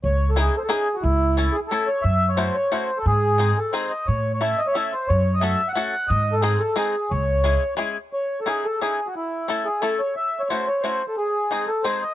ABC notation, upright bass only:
X:1
M:3/4
L:1/8
Q:"Swing" 1/4=178
K:C#m
V:1 name="Upright bass" clef=bass
C,,4 z2 | C,,4 z2 | F,,4 z2 | G,,4 z2 |
A,,4 z2 | F,,4 z2 | G,,4 z2 | C,,4 z2 |
z6 | z6 | z6 | z6 |]